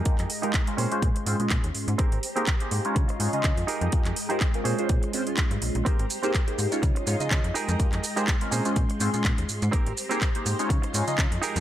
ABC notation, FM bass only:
X:1
M:4/4
L:1/16
Q:"Swing 16ths" 1/4=124
K:Bbdor
V:1 name="FM bass" clef=bass
F,, F,, z4 B,, z B,, z A,, B,, B,, E,, A,, A,, | A,,, A,,, z4 A,, z D, z A,, D, D, F,, z F,, | z F,, z4 B,, z B,, z4 G,, B,,, B,,, | z A,,, z4 A,, z D, z A,, D, D, F,, z F,, |
z F,, z4 B,, z B,, z A,, B,, B,, E,, A,, A,, | A,,, A,,, z4 A,, z D, z A,, D, D, F,, z F,, |]